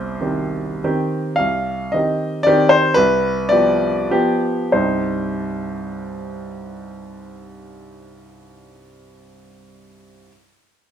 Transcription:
Already playing: C2 C5 C6
0.21 D#3 C4 G4
0.84 D#3 C4 G4
1.36 C2 F5
1.92 D#3 C4 G4 D#5
2.43 D#3 C4 G4 D5
2.69 C5
2.94 C2 B4
3.49 F3 B3 G4 D5
4.10 F3 B3 G4
4.72 C2 G2 G3 C4 D#4 G4 C5

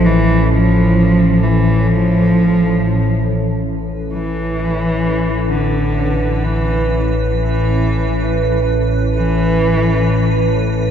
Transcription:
Already playing: A1
0.05 E3
0.51 F3
1.42 E3
1.87 F3
3.66 A1 B4
4.13 E3
5.50 D3
6.43 E3
7.33 E3
9.15 E3

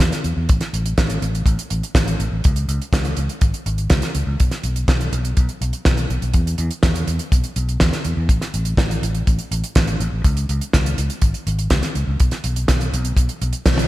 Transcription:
0.00 closed hi-hat
0.12 snare, closed hi-hat
0.24 E2, closed hi-hat
0.37 E2
0.49 A1, kick, closed hi-hat
0.61 snare, closed hi-hat
0.73 A1, closed hi-hat
0.86 closed hi-hat
0.98 A1, kick, snare, closed hi-hat
1.10 closed hi-hat
1.22 A1, closed hi-hat
1.35 closed hi-hat
1.46 A1, kick, closed hi-hat
1.59 closed hi-hat
1.70 A1, closed hi-hat
1.83 closed hi-hat
1.95 A1, kick, snare, closed hi-hat
2.08 closed hi-hat
2.20 A1, closed hi-hat
2.32 A1
2.44 C#2, kick, closed hi-hat
2.56 closed hi-hat
2.68 C#2, closed hi-hat
2.82 closed hi-hat
2.93 C#2, kick, snare, closed hi-hat
3.05 closed hi-hat
3.17 C#2, closed hi-hat
3.29 closed hi-hat
3.41 G#1, kick, closed hi-hat
3.54 closed hi-hat
3.66 G#1, closed hi-hat
3.78 closed hi-hat
3.90 C#2, kick, snare, closed hi-hat
4.02 snare, closed hi-hat
4.15 C#2, closed hi-hat
4.27 C#2
4.40 B1, kick, closed hi-hat
4.51 snare, closed hi-hat
4.64 B1, closed hi-hat
4.76 closed hi-hat
4.88 B1, kick, snare, closed hi-hat
5.01 closed hi-hat
5.12 B1, closed hi-hat
5.25 closed hi-hat
5.37 B1, kick, closed hi-hat
5.49 closed hi-hat
5.61 B1, closed hi-hat
5.73 closed hi-hat
5.85 B1, kick, snare, closed hi-hat
5.97 closed hi-hat
6.10 B1, closed hi-hat
6.22 B1, closed hi-hat
6.34 E2, kick, closed hi-hat
6.47 closed hi-hat
6.58 E2, closed hi-hat
6.71 closed hi-hat
6.83 E2, kick, snare, closed hi-hat
6.95 closed hi-hat
7.08 E2, closed hi-hat
7.19 closed hi-hat
7.32 B1, kick, closed hi-hat
7.44 closed hi-hat
7.56 B1, closed hi-hat
7.69 closed hi-hat
7.80 E2, kick, snare, closed hi-hat
7.93 snare, closed hi-hat
8.04 E2, closed hi-hat
8.17 E2
8.29 A1, kick, closed hi-hat
8.41 snare, closed hi-hat
8.54 A1, closed hi-hat
8.65 closed hi-hat
8.77 A1, kick, snare, closed hi-hat
8.91 closed hi-hat
9.02 A1, closed hi-hat
9.15 closed hi-hat
9.27 A1, kick, closed hi-hat
9.39 closed hi-hat
9.51 A1, closed hi-hat
9.64 closed hi-hat
9.75 A1, kick, snare, closed hi-hat
9.87 closed hi-hat
10.00 A1, closed hi-hat
10.12 A1
10.24 C#2, kick, closed hi-hat
10.37 closed hi-hat
10.49 C#2, closed hi-hat
10.61 closed hi-hat
10.73 C#2, kick, snare, closed hi-hat
10.86 closed hi-hat
10.98 C#2, closed hi-hat
11.10 closed hi-hat
11.22 G#1, kick, closed hi-hat
11.34 closed hi-hat
11.47 G#1, closed hi-hat
11.59 closed hi-hat
11.70 C#2, kick, snare, closed hi-hat
11.83 snare, closed hi-hat
11.95 C#2, closed hi-hat
12.07 C#2
12.20 B1, kick, closed hi-hat
12.31 snare, closed hi-hat
12.44 B1, closed hi-hat
12.56 closed hi-hat
12.68 B1, kick, snare, closed hi-hat
12.81 closed hi-hat
12.93 B1, closed hi-hat
13.05 closed hi-hat
13.17 B1, kick, closed hi-hat
13.29 closed hi-hat
13.42 B1, closed hi-hat
13.53 closed hi-hat
13.66 B1, kick, snare, closed hi-hat, high tom
13.78 closed hi-hat, high tom

